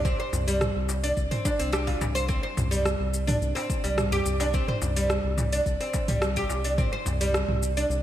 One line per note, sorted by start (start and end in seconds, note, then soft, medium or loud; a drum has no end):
0.00 0.14 C2 medium
0.05 0.19 C4 medium
0.05 kick loud
0.05 shaker soft
0.20 0.32 C5 medium
0.20 darbuka ka soft
0.33 0.70 C2 loud
0.33 darbuka tek medium
0.33 darbuka dum medium
0.33 shaker medium
0.48 0.60 G3 medium
0.48 open hi-hat medium
0.48 shaker soft
0.61 cross-stick medium
0.61 mid tom medium
0.61 shaker soft
0.76 1.12 C2 medium
0.89 darbuka tek medium
0.89 shaker medium
1.04 1.11 D4 medium
1.04 open hi-hat medium
1.04 shaker soft
1.17 1.28 C2 loud
1.17 kick medium
1.17 shaker soft
1.31 1.43 C4 medium
1.31 mid tom medium
1.31 open hi-hat soft
1.31 darbuka ka medium
1.45 1.58 D4 loud
1.45 kick loud
1.45 darbuka tek medium
1.45 shaker medium
1.59 1.96 C2 medium
1.59 1.72 C4 loud
1.59 open hi-hat medium
1.59 shaker soft
1.73 1.87 G4 loud
1.73 cross-stick medium
1.73 shaker soft
1.87 2.00 F4 medium
1.87 kick medium
1.87 open hi-hat soft
1.87 darbuka ka medium
2.01 2.38 C2 medium
2.01 mid tom medium
2.01 darbuka ka medium
2.01 darbuka tek medium
2.01 shaker medium
2.15 2.23 C5 loud
2.15 open hi-hat medium
2.15 shaker soft
2.28 2.43 C4 medium
2.28 kick loud
2.28 shaker soft
2.43 2.56 C5 medium
2.43 darbuka ka medium
2.57 2.95 C2 loud
2.57 mid tom medium
2.57 darbuka tek medium
2.57 darbuka dum medium
2.57 shaker medium
2.71 2.84 G3 medium
2.71 open hi-hat medium
2.71 shaker soft
2.86 cross-stick medium
2.86 shaker soft
3.00 3.36 C2 medium
3.14 shaker medium
3.27 3.35 D4 medium
3.27 mid tom medium
3.27 open hi-hat medium
3.27 shaker soft
3.42 3.53 C2 loud
3.42 shaker soft
3.55 3.82 C4 medium
3.55 open hi-hat soft
3.55 darbuka tek medium
3.70 kick loud
3.70 darbuka ka soft
3.70 shaker medium
3.84 4.21 C2 medium
3.84 3.97 G3 medium
3.84 open hi-hat medium
3.84 darbuka ka medium
3.84 shaker soft
3.98 cross-stick loud
3.98 mid tom medium
3.98 shaker soft
4.12 4.25 G4 loud
4.12 open hi-hat soft
4.12 darbuka tek soft
4.12 darbuka dum medium
4.25 4.63 C2 medium
4.25 shaker medium
4.40 4.48 D4 medium
4.40 open hi-hat medium
4.40 darbuka ka soft
4.40 darbuka tek medium
4.40 shaker soft
4.54 4.68 C4 medium
4.54 kick loud
4.54 shaker soft
4.68 4.81 C5 medium
4.68 mid tom medium
4.68 darbuka ka medium
4.81 5.19 C2 loud
4.81 darbuka tek medium
4.81 darbuka dum medium
4.81 shaker medium
4.96 5.09 G3 medium
4.96 open hi-hat medium
4.96 shaker soft
5.10 cross-stick medium
5.10 shaker soft
5.24 5.61 C2 medium
5.38 mid tom medium
5.38 darbuka tek medium
5.38 shaker medium
5.53 5.60 D4 medium
5.53 open hi-hat medium
5.53 shaker soft
5.66 5.77 C2 loud
5.66 kick medium
5.66 shaker soft
5.80 6.07 C4 medium
5.80 open hi-hat soft
5.80 darbuka ka medium
5.93 kick loud
5.93 darbuka tek medium
5.93 shaker medium
6.08 6.45 C2 medium
6.08 6.21 G3 medium
6.08 mid tom medium
6.08 open hi-hat medium
6.08 shaker soft
6.22 cross-stick loud
6.22 shaker soft
6.36 6.49 G4 loud
6.36 kick medium
6.36 open hi-hat soft
6.36 darbuka ka medium
6.49 6.87 C2 medium
6.49 darbuka ka soft
6.49 darbuka tek medium
6.49 shaker medium
6.64 6.72 D4 medium
6.64 open hi-hat medium
6.64 shaker soft
6.78 6.92 C4 medium
6.78 kick loud
6.78 mid tom medium
6.78 shaker soft
6.92 7.05 C5 medium
6.92 darbuka ka medium
7.06 7.43 C2 loud
7.06 darbuka tek medium
7.06 darbuka dum medium
7.06 shaker medium
7.21 7.33 G3 medium
7.21 open hi-hat medium
7.21 shaker soft
7.34 cross-stick loud
7.34 shaker soft
7.48 7.85 C2 medium
7.48 mid tom medium
7.63 shaker medium
7.77 7.84 D4 medium
7.77 open hi-hat medium
7.77 shaker soft
7.89 8.01 C2 loud
7.89 shaker soft